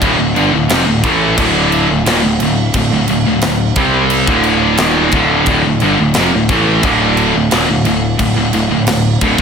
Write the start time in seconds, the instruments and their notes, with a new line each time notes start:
0.01 picked electric bass D1, distorted electric guitar D2 A2, kick, crash
0.19 picked electric bass D1, distorted electric guitar D2 A2
0.36 picked electric bass G1, distorted electric guitar G2 D3, crash
0.53 picked electric bass D1, distorted electric guitar D2 A2
0.69 picked electric bass F1, distorted electric guitar F2 C3, snare, crash
0.87 picked electric bass D1, distorted electric guitar D2 A2
1.04 picked electric bass A1, distorted electric guitar A2 E3 A3, kick, crash
1.38 picked electric bass D1, distorted electric guitar D2 A2 D3, kick, crash
1.72 crash
1.89 picked electric bass D1, distorted electric guitar D2 A2
2.06 picked electric bass D#1, distorted electric guitar D#2 A#2, snare, crash
2.23 picked electric bass D1, distorted electric guitar D2 A2
2.40 picked electric bass D1, distorted electric guitar D2 A2, crash
2.74 picked electric bass D1, distorted electric guitar D2 A2, kick, crash
2.92 picked electric bass D1, distorted electric guitar D2 A2
3.08 picked electric bass D1, distorted electric guitar D2 A2, crash
3.26 picked electric bass D1, distorted electric guitar D2 A2
3.41 picked electric bass D1, distorted electric guitar D2 A2, snare, crash
3.76 picked electric bass C2, distorted electric guitar C3 G3 C4, kick, crash
4.10 crash
4.27 picked electric bass D1, distorted electric guitar D2 A2 D3, kick
4.43 crash
4.77 picked electric bass D#1, distorted electric guitar D#2 A#2 D#3, snare, crash
5.12 picked electric bass D1, distorted electric guitar D2 A2 D3, kick, crash
5.46 picked electric bass D1, distorted electric guitar D2 A2, kick, crash
5.64 picked electric bass D1, distorted electric guitar D2 A2
5.80 picked electric bass G1, distorted electric guitar G2 D3, crash
6.00 picked electric bass D1, distorted electric guitar D2 A2
6.14 picked electric bass F1, snare, crash
6.18 distorted electric guitar F2 C3
6.34 picked electric bass D1, distorted electric guitar D2 A2
6.49 picked electric bass A1, distorted electric guitar A2 E3 A3, kick, crash
6.83 picked electric bass D1, distorted electric guitar D2 A2 D3, kick, crash
7.17 crash
7.35 picked electric bass D1, distorted electric guitar D2 A2
7.51 picked electric bass D#1, distorted electric guitar D#2 A#2, snare, crash
7.69 picked electric bass D1, distorted electric guitar D2 A2
7.85 picked electric bass D1, distorted electric guitar D2 A2, crash
8.19 picked electric bass D1, distorted electric guitar D2 A2, kick, crash
8.36 picked electric bass D1, distorted electric guitar D2 A2
8.53 picked electric bass D1, distorted electric guitar D2 A2, crash
8.70 picked electric bass D1, distorted electric guitar D2 A2
8.87 picked electric bass D1, distorted electric guitar D2 A2, snare, crash
9.21 picked electric bass D1, distorted electric guitar D2 A2, kick, crash
9.38 distorted electric guitar D#2 A#2, kick